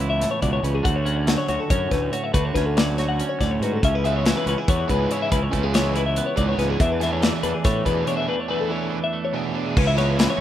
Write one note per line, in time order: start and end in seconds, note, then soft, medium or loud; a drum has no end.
0.00 0.24 C#2 medium
0.00 0.86 E3 medium
0.00 0.83 B3 medium
0.00 0.83 E4 medium
0.10 0.31 E5 medium
0.21 0.42 A2 medium
0.21 snare soft
0.21 closed hi-hat medium
0.31 0.42 C#5 medium
0.42 0.59 C#2 medium
0.42 0.63 B2 medium
0.42 0.52 D5 medium
0.42 kick medium
0.42 closed hi-hat medium
0.53 0.64 C#5 medium
0.63 0.80 C#2 medium
0.63 0.83 C#3 medium
0.63 0.75 B4 medium
0.63 closed hi-hat medium
0.75 0.85 G#4 medium
0.83 1.35 D2 loud
0.83 2.30 D3 medium
0.83 1.49 F#4 medium
0.83 0.95 F#5 medium
0.83 kick loud
0.83 closed hi-hat medium
0.96 1.06 C#5 medium
1.05 1.71 C#4 medium
1.05 1.17 F#5 medium
1.05 closed hi-hat medium
1.17 1.27 D5 medium
1.27 2.31 F#3 medium
1.27 1.37 F#5 medium
1.27 snare loud
1.27 closed hi-hat medium
1.38 1.47 C#5 medium
1.48 1.57 D2 medium
1.48 2.12 F#4 medium
1.48 1.59 C#5 medium
1.48 closed hi-hat medium
1.60 1.70 A4 medium
1.70 1.87 F#2 medium
1.70 2.36 C#4 medium
1.70 1.91 C#5 medium
1.70 kick loud
1.70 closed hi-hat loud
1.91 2.08 D2 medium
1.91 2.31 A2 medium
1.91 2.12 B4 medium
1.91 kick medium
1.91 snare soft
1.91 closed hi-hat medium
2.13 2.31 F#4 medium
2.13 2.24 C#5 medium
2.13 closed hi-hat medium
2.24 2.33 E5 medium
2.33 2.50 D2 loud
2.33 3.79 D3 medium
2.33 2.97 F#4 medium
2.33 2.45 B4 medium
2.33 kick loud
2.33 closed hi-hat loud
2.45 2.55 C#5 medium
2.55 3.21 D2 medium
2.55 3.20 C#4 medium
2.55 2.66 B4 medium
2.55 kick medium
2.55 snare soft
2.55 closed hi-hat medium
2.66 2.76 A4 medium
2.77 3.80 F#3 medium
2.77 2.98 D5 medium
2.77 snare loud
2.77 closed hi-hat medium
2.98 3.61 F#4 medium
2.98 3.08 C#5 medium
2.98 snare soft
2.98 closed hi-hat medium
3.09 3.29 F#5 medium
3.20 3.84 C#4 medium
3.20 closed hi-hat medium
3.29 3.40 C#5 medium
3.41 3.57 D2 medium
3.41 3.80 A2 medium
3.41 3.51 D5 medium
3.41 kick medium
3.41 snare soft
3.41 closed hi-hat medium
3.51 3.63 C#5 medium
3.60 3.77 G#2 medium
3.60 3.80 F#4 medium
3.60 3.74 B4 medium
3.60 closed hi-hat medium
3.74 3.83 A4 medium
3.83 4.32 C#2 loud
3.83 4.26 C#3 medium
3.83 3.95 C#4 medium
3.83 3.94 E5 medium
3.83 kick medium
3.83 closed hi-hat medium
3.95 4.47 E4 medium
3.95 4.04 B4 medium
4.04 4.24 E3 medium
4.04 4.24 G#3 medium
4.04 4.69 B3 medium
4.04 4.25 C#4 medium
4.04 4.25 G#4 medium
4.04 4.15 E5 medium
4.04 closed hi-hat medium
4.16 4.27 C#5 medium
4.25 4.53 E3 medium
4.25 5.73 E3 medium
4.25 4.53 G#3 medium
4.25 4.53 C#4 medium
4.25 4.53 G#4 medium
4.25 4.36 E5 medium
4.25 snare loud
4.25 closed hi-hat medium
4.37 4.47 B4 medium
4.46 4.54 C#2 medium
4.46 4.58 C#4 medium
4.46 4.58 B4 medium
4.46 closed hi-hat medium
4.58 5.10 E4 soft
4.58 4.68 G#4 medium
4.68 4.84 E2 medium
4.68 5.34 B3 medium
4.68 4.89 C#5 medium
4.68 kick loud
4.68 closed hi-hat medium
4.89 5.06 C#2 medium
4.89 5.29 G#2 medium
4.89 5.10 E3 medium
4.89 5.10 G#3 medium
4.89 5.10 C#4 loud
4.89 5.10 G#4 loud
4.89 5.12 B4 medium
4.89 kick medium
4.89 closed hi-hat medium
5.11 5.38 E3 medium
5.11 5.38 G#3 medium
5.11 5.38 C#4 medium
5.11 5.32 E4 medium
5.11 5.38 G#4 medium
5.11 5.21 C#5 medium
5.11 closed hi-hat medium
5.22 5.32 E5 medium
5.31 5.48 C#2 medium
5.31 5.73 C#3 medium
5.31 5.96 E4 medium
5.31 5.43 B4 medium
5.31 kick loud
5.31 closed hi-hat medium
5.43 5.53 C#5 medium
5.52 6.19 C#2 medium
5.52 5.72 E3 medium
5.52 5.72 G#3 medium
5.52 5.63 A3 medium
5.52 5.72 C#4 loud
5.52 5.73 G#4 medium
5.52 5.63 B4 medium
5.52 kick medium
5.52 closed hi-hat medium
5.63 6.16 B3 soft
5.63 5.74 G#4 medium
5.73 6.01 E3 medium
5.73 7.22 E3 medium
5.73 6.01 G#3 medium
5.73 6.01 C#4 medium
5.73 6.01 G#4 medium
5.73 5.95 C#5 medium
5.73 snare loud
5.73 closed hi-hat loud
5.96 6.58 E4 medium
5.96 6.06 B4 medium
5.96 closed hi-hat medium
6.06 6.26 E5 medium
6.16 7.01 B3 medium
6.16 closed hi-hat loud
6.26 6.37 C#5 medium
6.37 6.54 C#2 medium
6.37 6.77 G#2 medium
6.37 6.57 E3 medium
6.37 6.57 G#3 medium
6.37 6.58 C#4 medium
6.37 6.58 G#4 loud
6.37 6.48 D5 medium
6.37 kick medium
6.37 closed hi-hat medium
6.49 6.59 C#5 medium
6.58 6.75 C#2 medium
6.58 6.80 E3 medium
6.58 6.79 G#3 medium
6.58 6.70 C#4 medium
6.58 6.80 C#4 medium
6.58 6.80 G#4 medium
6.58 6.69 B4 medium
6.58 snare soft
6.58 closed hi-hat medium
6.70 6.80 E4 medium
6.70 6.80 G#4 medium
6.80 7.29 E2 loud
6.80 8.27 E2 medium
6.80 7.43 D4 medium
6.80 6.91 E5 medium
6.80 kick loud
6.80 closed hi-hat medium
6.92 7.02 B4 medium
7.00 7.21 E3 medium
7.00 7.64 A3 medium
7.00 7.21 B3 medium
7.00 7.22 D4 medium
7.00 7.21 G#4 medium
7.00 7.12 E5 medium
7.00 snare soft
7.00 closed hi-hat medium
7.13 7.22 C#5 medium
7.22 7.50 E3 medium
7.22 8.68 E3 medium
7.22 7.50 B3 medium
7.22 7.50 D4 medium
7.22 7.50 G#4 medium
7.22 7.34 D5 medium
7.22 snare loud
7.22 closed hi-hat medium
7.34 7.42 B4 medium
7.43 7.52 E2 medium
7.43 8.06 D4 medium
7.43 7.54 B4 medium
7.43 closed hi-hat medium
7.54 7.65 G#4 medium
7.64 7.81 A2 medium
7.64 8.48 A3 medium
7.64 7.86 C#5 medium
7.64 kick loud
7.64 snare soft
7.64 closed hi-hat medium
7.85 8.02 E2 medium
7.85 8.25 B2 medium
7.85 8.05 E3 medium
7.85 8.06 B3 medium
7.85 8.06 D4 medium
7.85 8.06 G#4 loud
7.85 8.07 B4 medium
7.85 kick medium
7.85 closed hi-hat medium
8.07 8.34 E3 medium
8.07 8.34 B3 medium
8.07 8.35 D4 medium
8.07 8.26 D4 medium
8.07 8.35 G#4 medium
8.07 8.17 C#5 medium
8.07 closed hi-hat medium
8.17 8.28 E5 medium
8.28 9.76 E2 medium
8.28 8.89 D4 medium
8.28 8.40 B4 medium
8.40 8.50 C#5 medium
8.48 8.69 E3 medium
8.48 9.12 A3 medium
8.48 8.69 B3 medium
8.48 8.69 D4 medium
8.48 8.70 G#4 medium
8.48 8.60 B4 medium
8.60 8.72 A4 medium
8.69 10.16 E3 medium
8.69 8.98 E3 medium
8.69 8.98 B3 medium
8.69 8.98 D4 medium
8.69 8.98 G#4 medium
8.69 8.93 C#5 medium
8.90 9.53 D4 medium
8.90 9.03 B4 medium
9.04 9.24 E5 medium
9.13 9.77 A3 medium
9.25 9.35 C#5 medium
9.33 9.73 B2 medium
9.33 9.53 E3 medium
9.33 9.53 B3 medium
9.33 9.54 D4 medium
9.33 9.54 G#4 loud
9.33 9.45 D5 medium
9.45 9.56 C#5 medium
9.54 9.76 E3 medium
9.54 9.76 B3 medium
9.54 9.74 D4 medium
9.54 9.76 D4 medium
9.54 9.76 G#4 medium
9.54 9.67 B4 medium
9.67 9.77 G#4 medium
9.77 10.26 C#2 loud
9.77 10.19 C#3 medium
9.77 9.86 C#4 medium
9.77 9.87 B4 medium
9.77 kick loud
9.77 crash loud
9.86 10.37 E4 medium
9.86 9.98 E5 medium
9.97 10.17 C#3 medium
9.97 10.17 G#3 medium
9.97 10.40 B3 medium
9.97 10.18 C#4 medium
9.97 10.18 E4 medium
9.97 10.19 C#5 medium
9.97 snare soft
9.97 ride medium
10.17 10.40 C#3 medium
10.17 10.40 E3 medium
10.17 10.40 G#3 medium
10.17 10.40 C#4 medium
10.17 10.40 E4 medium
10.17 10.30 B4 medium
10.17 snare loud
10.17 ride loud
10.30 10.40 C#5 medium
10.37 10.40 C#4 medium